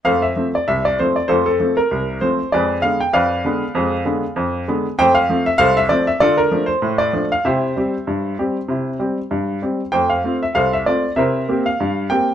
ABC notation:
X:1
M:2/4
L:1/16
Q:"Swing 16ths" 1/4=97
K:F
V:1 name="Grand piano"
[Acf] e2 d e d c d | [FAc] A2 B3 c2 | [_A_cd]2 f g [cdf]4- | [_cdf]6 z2 |
[cg] f2 e [Acf] e d e | [FAd] B2 c2 d2 f | [Gce]8- | [Gce]6 z2 |
[cg] f2 e [Acf] e d2 | [Bce]3 f3 g2 |]
V:2 name="Grand piano"
[F,,A,]2 [F,A,C]2 C,,2 [F,A,C]2 | [F,,A,]2 [F,A,C]2 C,,2 [F,A,C]2 | [F,,_A,]2 [D,A,_C]2 F,,2 [D,A,C]2 | [F,,_A,]2 [D,A,_C]2 F,,2 [D,A,C]2 |
[F,,A,]2 [F,A,C]2 C,,2 [F,A,C]2 | D,2 [F,A,D]2 A,,2 [F,A,D]2 | [C,E]2 [G,CG]2 G,,2 [G,CG]2 | [C,E]2 [G,CG]2 G,,2 [G,CG]2 |
[F,,A,]2 [A,CF]2 C,,2 [A,CF]2 | [C,E]2 [B,CG]2 G,,2 [B,CG]2 |]